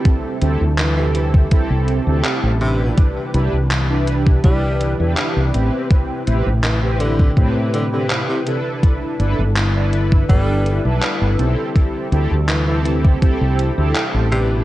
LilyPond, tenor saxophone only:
\new Staff \with { instrumentName = "Tenor saxophone" } { \clef bass \time 4/4 \key d \dorian \tempo 4 = 82 r4 e16 e16 e16 r4. r16 c8 | r2 g8. r4 r16 | r4 e16 r16 d8 r8 d16 d16 r16 c16 c16 r16 | r2 g8. r4 r16 |
r4 e16 e16 e16 r4. r16 c8 | }